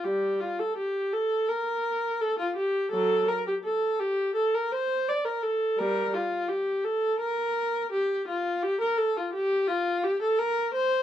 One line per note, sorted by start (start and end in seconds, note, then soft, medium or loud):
0.04 0.38 G3 soft
0.04 0.40 G4 medium
0.41 0.58 F4 medium
0.59 0.77 A4 medium
0.77 1.12 G4 medium
1.13 1.49 A4 medium
1.48 2.21 A#4 medium
2.21 2.39 A4 medium
2.39 2.56 F4 medium
2.56 2.91 G4 medium
2.91 3.25 F#3 medium
2.91 3.27 A4 medium
3.28 3.46 A#4 medium
3.47 3.54 G4 medium
3.64 3.99 A4 medium
4.00 4.36 G4 medium
4.35 4.53 A4 medium
4.54 4.72 A#4 medium
4.72 5.08 C5 medium
5.09 5.26 D5 medium
5.25 5.43 A#4 medium
5.43 5.78 A4 medium
5.78 6.11 G3 medium
5.78 6.14 A#4 medium
6.14 6.49 F4 medium
6.49 6.84 G4 medium
6.85 7.20 A4 medium
7.20 7.90 A#4 medium
7.92 8.27 G4 medium
8.28 8.63 F4 medium
8.63 8.81 G4 medium
8.81 8.98 A#4 medium
8.98 9.16 A4 medium
9.17 9.34 F4 medium
9.33 9.67 G4 medium
9.68 10.03 F4 medium
10.04 10.21 G4 medium
10.22 10.38 A4 medium
10.39 10.74 A#4 medium
10.74 11.03 C5 medium